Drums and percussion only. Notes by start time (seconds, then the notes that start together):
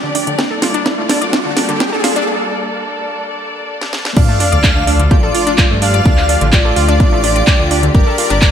0.15 open hi-hat
0.27 closed hi-hat
0.39 kick, snare, closed hi-hat
0.62 snare, open hi-hat
0.74 closed hi-hat
0.86 kick, snare, closed hi-hat
1.09 snare, open hi-hat
1.22 closed hi-hat
1.33 kick, snare, closed hi-hat
1.57 snare, open hi-hat
1.69 closed hi-hat
1.80 kick, snare, closed hi-hat
2.04 snare, open hi-hat
2.16 closed hi-hat
3.81 snare
3.93 snare
4.05 snare
4.17 kick, closed hi-hat, crash
4.40 open hi-hat
4.52 closed hi-hat
4.64 kick, clap, closed hi-hat
4.87 open hi-hat
5.00 closed hi-hat
5.11 kick, closed hi-hat
5.35 open hi-hat
5.47 closed hi-hat
5.58 kick, clap, closed hi-hat
5.82 open hi-hat
5.94 closed hi-hat
6.06 kick, closed hi-hat
6.17 clap
6.29 open hi-hat
6.41 closed hi-hat
6.53 kick, clap, closed hi-hat
6.76 open hi-hat
6.89 closed hi-hat
7.00 kick, closed hi-hat
7.24 open hi-hat
7.36 closed hi-hat
7.47 kick, clap, closed hi-hat
7.71 open hi-hat
7.83 closed hi-hat
7.95 kick, closed hi-hat
8.18 open hi-hat
8.30 closed hi-hat
8.42 kick, clap, closed hi-hat